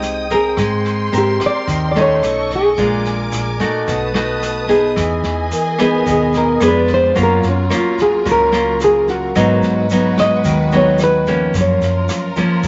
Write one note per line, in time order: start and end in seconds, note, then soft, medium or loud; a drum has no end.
0.00 0.54 C2 loud
0.00 0.55 G#3 medium
0.00 0.26 C4 medium
0.00 0.26 D#4 medium
0.00 0.26 G4 medium
0.00 2.18 G5 medium
0.00 0.55 D#6 medium
0.00 snare soft
0.00 shaker medium
0.30 1.08 C4 medium
0.30 1.09 A#4 medium
0.30 kick soft
0.30 snare soft
0.30 shaker soft
0.34 1.17 G#4 medium
0.57 1.09 G#2 medium
0.57 1.65 G#3 medium
0.57 2.21 A#4 medium
0.57 2.21 C6 medium
0.57 kick medium
0.57 cross-stick medium
0.57 snare soft
0.57 shaker medium
0.85 snare soft
0.85 shaker soft
1.12 1.38 G#2 medium
1.12 1.91 C4 medium
1.12 1.91 G4 medium
1.12 1.91 A#4 medium
1.12 snare soft
1.12 shaker medium
1.18 1.43 G4 medium
1.40 kick soft
1.40 cross-stick medium
1.40 snare soft
1.40 shaker soft
1.46 1.90 D5 loud
1.67 2.19 D#2 loud
1.67 2.19 D#3 medium
1.67 kick medium
1.67 snare soft
1.67 shaker medium
1.91 1.97 D5 medium
1.91 snare soft
1.96 2.73 A3 medium
1.96 2.74 C#4 medium
1.96 2.74 D#4 medium
1.96 shaker soft
2.01 2.54 C#5 medium
2.22 2.73 B1 medium
2.22 2.78 A4 medium
2.22 2.77 D#5 medium
2.22 2.77 C#6 medium
2.22 cross-stick medium
2.22 snare soft
2.22 shaker medium
2.50 kick soft
2.50 snare soft
2.50 shaker soft
2.55 3.58 G#4 medium
2.77 3.29 A#1 medium
2.77 3.85 A#2 medium
2.77 3.56 G#3 medium
2.77 3.56 D4 medium
2.77 3.56 F4 medium
2.77 3.86 A#4 medium
2.77 3.86 G#5 medium
2.77 3.86 D6 medium
2.77 kick medium
2.77 snare soft
2.77 shaker medium
3.05 snare soft
3.05 shaker soft
3.32 3.58 A#1 medium
3.32 cross-stick medium
3.32 snare soft
3.32 shaker medium
3.60 4.10 A3 medium
3.60 4.10 D#4 medium
3.60 4.11 F#4 medium
3.60 kick soft
3.60 snare soft
3.60 shaker soft
3.87 4.93 B1 loud
3.87 4.94 B2 soft
3.87 4.97 B4 medium
3.87 4.97 A5 medium
3.87 4.97 D#6 medium
3.87 kick medium
3.87 snare soft
3.87 shaker medium
4.14 4.65 A3 medium
4.14 4.65 D#4 medium
4.14 4.65 F#4 medium
4.14 cross-stick medium
4.14 snare soft
4.14 shaker soft
4.42 snare soft
4.42 shaker medium
4.68 5.46 B3 medium
4.68 5.47 D#4 medium
4.68 5.47 G#4 medium
4.68 kick soft
4.68 snare soft
4.68 shaker soft
4.96 5.22 E2 medium
4.96 6.03 E3 medium
4.96 6.60 G#4 medium
4.96 6.60 D#5 medium
4.96 6.60 G#5 medium
4.96 kick medium
4.96 cross-stick medium
4.96 snare soft
4.96 shaker medium
5.24 5.50 E2 medium
5.24 snare soft
5.24 shaker soft
5.51 6.43 A#4 soft
5.51 snare soft
5.51 shaker medium
5.79 6.57 B3 medium
5.79 6.57 D#4 medium
5.79 6.57 G#4 medium
5.79 kick soft
5.79 cross-stick medium
5.79 snare soft
5.79 shaker soft
6.06 6.57 D#2 medium
6.06 6.58 B2 medium
6.06 kick medium
6.06 snare soft
6.06 shaker medium
6.11 6.35 G#4 medium
6.33 snare soft
6.33 shaker soft
6.38 6.62 A#4 medium
6.60 7.12 F2 loud
6.60 7.16 G#3 medium
6.60 7.14 B3 medium
6.60 7.14 D4 medium
6.60 9.33 F4 medium
6.60 7.14 G#4 medium
6.60 7.16 D5 medium
6.60 cross-stick medium
6.60 snare soft
6.60 shaker medium
6.68 6.91 B4 medium
6.88 kick soft
6.88 snare soft
6.88 shaker soft
6.94 7.18 C5 loud
7.15 7.41 F#2 medium
7.15 8.22 F#3 medium
7.15 9.33 F#3 medium
7.15 7.51 A#3 medium
7.15 7.51 C#4 medium
7.15 7.51 F4 medium
7.15 9.33 A#4 medium
7.15 kick medium
7.15 snare soft
7.15 shaker medium
7.23 7.46 A#4 medium
7.43 7.69 F#2 medium
7.43 snare soft
7.43 shaker soft
7.49 7.73 C#4 medium
7.70 8.21 A#3 medium
7.70 8.21 C#4 medium
7.70 8.21 F4 medium
7.70 cross-stick medium
7.70 snare soft
7.70 shaker medium
7.77 8.01 F4 medium
7.98 8.27 G#4 medium
7.98 kick soft
7.98 snare soft
7.98 shaker soft
8.25 9.31 C#2 loud
8.25 9.32 C#3 medium
8.25 8.48 A#3 soft
8.25 8.49 C#4 medium
8.25 8.49 F4 medium
8.25 kick medium
8.25 snare soft
8.25 shaker medium
8.31 8.80 A#4 medium
8.52 9.30 A#3 medium
8.52 9.30 C#4 medium
8.52 9.31 F4 medium
8.52 cross-stick medium
8.52 snare soft
8.52 shaker soft
8.80 9.59 A#4 soft
8.80 snare soft
8.80 shaker medium
8.84 9.09 G#4 medium
9.08 9.87 F#4 medium
9.08 kick soft
9.08 snare soft
9.08 shaker soft
9.35 9.61 G#2 medium
9.35 10.42 G#2 medium
9.35 9.86 F#3 medium
9.35 11.53 G#3 medium
9.35 9.86 B3 medium
9.35 9.86 D#4 medium
9.35 11.53 F#4 medium
9.35 11.53 B4 medium
9.35 kick medium
9.35 cross-stick medium
9.35 snare soft
9.35 shaker medium
9.62 9.88 G#2 medium
9.62 snare soft
9.62 shaker soft
9.90 10.68 F#3 medium
9.90 10.69 B3 medium
9.90 10.69 D#4 medium
9.90 snare soft
9.90 shaker medium
10.17 10.70 D#5 medium
10.17 kick soft
10.17 cross-stick medium
10.17 snare soft
10.17 shaker soft
10.44 11.50 D#2 loud
10.44 11.52 D#3 medium
10.44 kick medium
10.44 snare soft
10.44 shaker medium
10.71 11.23 F#3 medium
10.71 11.23 B3 medium
10.71 11.23 D#4 medium
10.71 snare soft
10.71 shaker soft
10.77 11.01 C#5 medium
10.98 cross-stick medium
10.98 snare soft
10.98 shaker medium
11.04 11.53 B4 medium
11.26 12.32 F3 medium
11.26 12.33 A#3 medium
11.26 12.33 C#4 medium
11.26 kick soft
11.26 snare soft
11.26 shaker soft
11.53 11.80 F#2 medium
11.53 12.62 F#2 medium
11.53 12.68 F4 medium
11.53 12.68 A#4 medium
11.53 kick medium
11.53 snare soft
11.53 shaker medium
11.61 12.36 C#5 medium
11.81 12.07 F#2 medium
11.81 snare soft
11.81 shaker soft
12.09 cross-stick medium
12.09 snare soft
12.09 shaker medium
12.36 12.68 F3 medium
12.36 12.68 A#3 medium
12.36 12.68 C#4 medium
12.36 kick soft
12.36 snare soft
12.36 shaker soft
12.63 12.68 C#2 loud
12.63 12.68 C#3 medium
12.63 kick medium
12.63 snare soft
12.63 shaker medium